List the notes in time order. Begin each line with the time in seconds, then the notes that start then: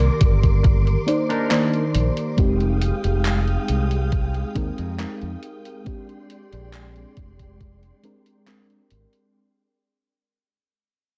Already playing: D#3 A#3 G4 A#4 D5 C6 D6
0.00 closed hi-hat
0.21 G1, kick, closed hi-hat
0.43 kick, closed hi-hat
0.63 muted clean electric guitar stroke, kick, closed hi-hat
0.85 muted clean electric guitar stroke, closed hi-hat
1.06 A#3 D#4 C5 D5, closed hi-hat
1.29 D4 D#4 A#4, closed hi-hat
1.51 D#3 A#3 C5 D5, clap, closed hi-hat
1.73 closed hi-hat
1.95 A#1, closed hi-hat
2.17 closed hi-hat
2.37 F1 G#3 C4 D#4 G4 F5 G5 D#6, kick, closed hi-hat
2.60 closed hi-hat
2.81 closed hi-hat
3.04 F1, closed hi-hat
3.25 clap, closed hi-hat
3.48 closed hi-hat
3.68 C2, closed hi-hat
3.91 closed hi-hat
4.12 kick, closed hi-hat
4.34 closed hi-hat
4.55 D#2 G#3 C4 D#4 A#4, kick, closed hi-hat
4.78 F2, closed hi-hat
4.98 G#3 C4 D#4 A#4, clap, closed hi-hat
5.22 F2, closed hi-hat
5.43 closed hi-hat
5.65 closed hi-hat
5.84 G#3 C4 D4 G4 D5 C6, kick, closed hi-hat
6.09 closed hi-hat
6.30 closed hi-hat
6.53 A#1, closed hi-hat
6.73 clap, closed hi-hat
6.96 closed hi-hat
7.17 F1, kick, closed hi-hat
7.39 kick, closed hi-hat
7.61 kick, closed hi-hat
7.83 closed hi-hat
8.03 G#3 C4 D4 A#4, closed hi-hat
8.26 closed hi-hat
8.47 G#3 C4 D4 A#4, clap, closed hi-hat
8.70 closed hi-hat
8.91 G#1, closed hi-hat
9.13 closed hi-hat